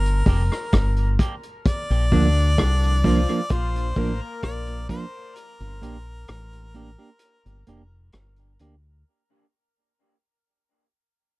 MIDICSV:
0, 0, Header, 1, 6, 480
1, 0, Start_track
1, 0, Tempo, 925069
1, 857, Time_signature, 4, 2, 24, 8
1, 5915, End_track
2, 0, Start_track
2, 0, Title_t, "Harmonica"
2, 0, Program_c, 0, 22
2, 0, Note_on_c, 0, 70, 85
2, 600, Note_off_c, 0, 70, 0
2, 869, Note_on_c, 0, 74, 116
2, 1829, Note_on_c, 0, 72, 107
2, 1837, Note_off_c, 0, 74, 0
2, 2186, Note_on_c, 0, 70, 89
2, 2194, Note_off_c, 0, 72, 0
2, 2297, Note_off_c, 0, 70, 0
2, 2300, Note_on_c, 0, 74, 100
2, 2522, Note_off_c, 0, 74, 0
2, 2541, Note_on_c, 0, 72, 99
2, 2779, Note_on_c, 0, 70, 88
2, 2787, Note_off_c, 0, 72, 0
2, 4218, Note_off_c, 0, 70, 0
2, 5915, End_track
3, 0, Start_track
3, 0, Title_t, "Clean electric guitar"
3, 0, Program_c, 1, 27
3, 141, Note_on_c, 1, 58, 77
3, 146, Note_on_c, 1, 62, 86
3, 148, Note_on_c, 1, 67, 81
3, 215, Note_off_c, 1, 58, 0
3, 217, Note_off_c, 1, 62, 0
3, 218, Note_off_c, 1, 67, 0
3, 621, Note_on_c, 1, 58, 76
3, 625, Note_on_c, 1, 62, 80
3, 626, Note_on_c, 1, 67, 88
3, 695, Note_off_c, 1, 58, 0
3, 697, Note_off_c, 1, 62, 0
3, 697, Note_off_c, 1, 67, 0
3, 1100, Note_on_c, 1, 53, 76
3, 1103, Note_on_c, 1, 58, 80
3, 1108, Note_on_c, 1, 62, 85
3, 1175, Note_off_c, 1, 53, 0
3, 1176, Note_off_c, 1, 58, 0
3, 1178, Note_off_c, 1, 62, 0
3, 1581, Note_on_c, 1, 53, 75
3, 1584, Note_on_c, 1, 58, 80
3, 1587, Note_on_c, 1, 62, 85
3, 1655, Note_off_c, 1, 53, 0
3, 1656, Note_off_c, 1, 58, 0
3, 1658, Note_off_c, 1, 62, 0
3, 1706, Note_on_c, 1, 62, 59
3, 1709, Note_on_c, 1, 58, 55
3, 1714, Note_on_c, 1, 53, 48
3, 1759, Note_off_c, 1, 62, 0
3, 1760, Note_off_c, 1, 58, 0
3, 1762, Note_off_c, 1, 53, 0
3, 2059, Note_on_c, 1, 53, 75
3, 2065, Note_on_c, 1, 58, 81
3, 2068, Note_on_c, 1, 62, 82
3, 2134, Note_off_c, 1, 53, 0
3, 2137, Note_off_c, 1, 58, 0
3, 2138, Note_off_c, 1, 62, 0
3, 2539, Note_on_c, 1, 53, 69
3, 2543, Note_on_c, 1, 58, 76
3, 2546, Note_on_c, 1, 62, 84
3, 2614, Note_off_c, 1, 53, 0
3, 2616, Note_off_c, 1, 58, 0
3, 2617, Note_off_c, 1, 62, 0
3, 3018, Note_on_c, 1, 58, 75
3, 3022, Note_on_c, 1, 62, 73
3, 3025, Note_on_c, 1, 67, 75
3, 3093, Note_off_c, 1, 58, 0
3, 3095, Note_off_c, 1, 62, 0
3, 3097, Note_off_c, 1, 67, 0
3, 3499, Note_on_c, 1, 58, 75
3, 3504, Note_on_c, 1, 62, 77
3, 3506, Note_on_c, 1, 67, 79
3, 3573, Note_off_c, 1, 58, 0
3, 3576, Note_off_c, 1, 62, 0
3, 3577, Note_off_c, 1, 67, 0
3, 3625, Note_on_c, 1, 67, 60
3, 3627, Note_on_c, 1, 62, 57
3, 3629, Note_on_c, 1, 58, 49
3, 3677, Note_off_c, 1, 67, 0
3, 3679, Note_off_c, 1, 62, 0
3, 3680, Note_off_c, 1, 58, 0
3, 3980, Note_on_c, 1, 58, 78
3, 3987, Note_on_c, 1, 62, 85
3, 3988, Note_on_c, 1, 67, 86
3, 4054, Note_off_c, 1, 58, 0
3, 4057, Note_off_c, 1, 62, 0
3, 4058, Note_off_c, 1, 67, 0
3, 4464, Note_on_c, 1, 58, 66
3, 4466, Note_on_c, 1, 62, 81
3, 4470, Note_on_c, 1, 67, 74
3, 4536, Note_off_c, 1, 58, 0
3, 4537, Note_off_c, 1, 62, 0
3, 4539, Note_off_c, 1, 67, 0
3, 5915, End_track
4, 0, Start_track
4, 0, Title_t, "Horn section"
4, 0, Program_c, 2, 61
4, 1100, Note_on_c, 2, 50, 75
4, 1101, Note_on_c, 2, 62, 83
4, 1291, Note_off_c, 2, 50, 0
4, 1291, Note_off_c, 2, 62, 0
4, 1338, Note_on_c, 2, 50, 65
4, 1341, Note_on_c, 2, 62, 76
4, 1530, Note_off_c, 2, 50, 0
4, 1532, Note_off_c, 2, 62, 0
4, 1581, Note_on_c, 2, 65, 91
4, 1583, Note_on_c, 2, 53, 88
4, 1771, Note_off_c, 2, 65, 0
4, 1773, Note_off_c, 2, 53, 0
4, 1819, Note_on_c, 2, 65, 89
4, 1820, Note_on_c, 2, 53, 77
4, 2010, Note_off_c, 2, 65, 0
4, 2011, Note_off_c, 2, 53, 0
4, 2060, Note_on_c, 2, 58, 92
4, 2061, Note_on_c, 2, 70, 100
4, 2518, Note_off_c, 2, 58, 0
4, 2518, Note_off_c, 2, 70, 0
4, 5915, End_track
5, 0, Start_track
5, 0, Title_t, "Fingered electric bass"
5, 0, Program_c, 3, 33
5, 0, Note_on_c, 3, 31, 91
5, 121, Note_off_c, 3, 31, 0
5, 137, Note_on_c, 3, 29, 80
5, 254, Note_off_c, 3, 29, 0
5, 381, Note_on_c, 3, 31, 88
5, 603, Note_off_c, 3, 31, 0
5, 987, Note_on_c, 3, 34, 82
5, 1092, Note_off_c, 3, 34, 0
5, 1101, Note_on_c, 3, 38, 86
5, 1323, Note_off_c, 3, 38, 0
5, 1341, Note_on_c, 3, 36, 86
5, 1684, Note_off_c, 3, 36, 0
5, 1820, Note_on_c, 3, 34, 82
5, 2042, Note_off_c, 3, 34, 0
5, 2058, Note_on_c, 3, 33, 85
5, 2174, Note_off_c, 3, 33, 0
5, 2301, Note_on_c, 3, 34, 88
5, 2522, Note_off_c, 3, 34, 0
5, 2906, Note_on_c, 3, 31, 88
5, 3011, Note_off_c, 3, 31, 0
5, 3023, Note_on_c, 3, 34, 89
5, 3243, Note_off_c, 3, 34, 0
5, 3262, Note_on_c, 3, 33, 83
5, 3604, Note_off_c, 3, 33, 0
5, 3869, Note_on_c, 3, 31, 80
5, 3972, Note_off_c, 3, 31, 0
5, 3981, Note_on_c, 3, 29, 77
5, 4202, Note_off_c, 3, 29, 0
5, 4221, Note_on_c, 3, 31, 90
5, 4442, Note_off_c, 3, 31, 0
5, 4461, Note_on_c, 3, 38, 83
5, 4682, Note_off_c, 3, 38, 0
5, 5915, End_track
6, 0, Start_track
6, 0, Title_t, "Drums"
6, 30, Note_on_c, 9, 42, 45
6, 82, Note_off_c, 9, 42, 0
6, 136, Note_on_c, 9, 36, 84
6, 137, Note_on_c, 9, 46, 49
6, 188, Note_off_c, 9, 36, 0
6, 189, Note_off_c, 9, 46, 0
6, 268, Note_on_c, 9, 37, 64
6, 320, Note_off_c, 9, 37, 0
6, 376, Note_on_c, 9, 42, 83
6, 379, Note_on_c, 9, 36, 89
6, 381, Note_on_c, 9, 37, 113
6, 428, Note_off_c, 9, 42, 0
6, 431, Note_off_c, 9, 36, 0
6, 433, Note_off_c, 9, 37, 0
6, 501, Note_on_c, 9, 42, 38
6, 552, Note_off_c, 9, 42, 0
6, 618, Note_on_c, 9, 36, 91
6, 621, Note_on_c, 9, 42, 81
6, 670, Note_off_c, 9, 36, 0
6, 673, Note_off_c, 9, 42, 0
6, 743, Note_on_c, 9, 42, 34
6, 795, Note_off_c, 9, 42, 0
6, 859, Note_on_c, 9, 36, 120
6, 860, Note_on_c, 9, 42, 78
6, 911, Note_off_c, 9, 36, 0
6, 912, Note_off_c, 9, 42, 0
6, 988, Note_on_c, 9, 42, 48
6, 1040, Note_off_c, 9, 42, 0
6, 1100, Note_on_c, 9, 36, 89
6, 1104, Note_on_c, 9, 46, 51
6, 1152, Note_off_c, 9, 36, 0
6, 1156, Note_off_c, 9, 46, 0
6, 1340, Note_on_c, 9, 36, 96
6, 1340, Note_on_c, 9, 42, 63
6, 1344, Note_on_c, 9, 37, 106
6, 1392, Note_off_c, 9, 36, 0
6, 1392, Note_off_c, 9, 42, 0
6, 1396, Note_off_c, 9, 37, 0
6, 1469, Note_on_c, 9, 42, 54
6, 1521, Note_off_c, 9, 42, 0
6, 1579, Note_on_c, 9, 36, 95
6, 1581, Note_on_c, 9, 46, 64
6, 1631, Note_off_c, 9, 36, 0
6, 1633, Note_off_c, 9, 46, 0
6, 1709, Note_on_c, 9, 42, 31
6, 1761, Note_off_c, 9, 42, 0
6, 1812, Note_on_c, 9, 42, 78
6, 1818, Note_on_c, 9, 36, 104
6, 1864, Note_off_c, 9, 42, 0
6, 1870, Note_off_c, 9, 36, 0
6, 1950, Note_on_c, 9, 42, 49
6, 2002, Note_off_c, 9, 42, 0
6, 2056, Note_on_c, 9, 36, 89
6, 2058, Note_on_c, 9, 46, 45
6, 2108, Note_off_c, 9, 36, 0
6, 2110, Note_off_c, 9, 46, 0
6, 2295, Note_on_c, 9, 42, 72
6, 2299, Note_on_c, 9, 36, 85
6, 2301, Note_on_c, 9, 37, 110
6, 2347, Note_off_c, 9, 42, 0
6, 2351, Note_off_c, 9, 36, 0
6, 2352, Note_off_c, 9, 37, 0
6, 2420, Note_on_c, 9, 42, 37
6, 2472, Note_off_c, 9, 42, 0
6, 2538, Note_on_c, 9, 36, 89
6, 2540, Note_on_c, 9, 42, 81
6, 2590, Note_off_c, 9, 36, 0
6, 2592, Note_off_c, 9, 42, 0
6, 2779, Note_on_c, 9, 42, 79
6, 2831, Note_off_c, 9, 42, 0
6, 2907, Note_on_c, 9, 42, 45
6, 2959, Note_off_c, 9, 42, 0
6, 3023, Note_on_c, 9, 42, 67
6, 3075, Note_off_c, 9, 42, 0
6, 3258, Note_on_c, 9, 42, 71
6, 3262, Note_on_c, 9, 37, 102
6, 3310, Note_off_c, 9, 42, 0
6, 3314, Note_off_c, 9, 37, 0
6, 3388, Note_on_c, 9, 42, 47
6, 3440, Note_off_c, 9, 42, 0
6, 3499, Note_on_c, 9, 42, 54
6, 3551, Note_off_c, 9, 42, 0
6, 3731, Note_on_c, 9, 42, 85
6, 3783, Note_off_c, 9, 42, 0
6, 3869, Note_on_c, 9, 42, 44
6, 3921, Note_off_c, 9, 42, 0
6, 3978, Note_on_c, 9, 42, 61
6, 4030, Note_off_c, 9, 42, 0
6, 4215, Note_on_c, 9, 42, 73
6, 4220, Note_on_c, 9, 37, 105
6, 4267, Note_off_c, 9, 42, 0
6, 4272, Note_off_c, 9, 37, 0
6, 4338, Note_on_c, 9, 42, 37
6, 4390, Note_off_c, 9, 42, 0
6, 4458, Note_on_c, 9, 42, 78
6, 4510, Note_off_c, 9, 42, 0
6, 5915, End_track
0, 0, End_of_file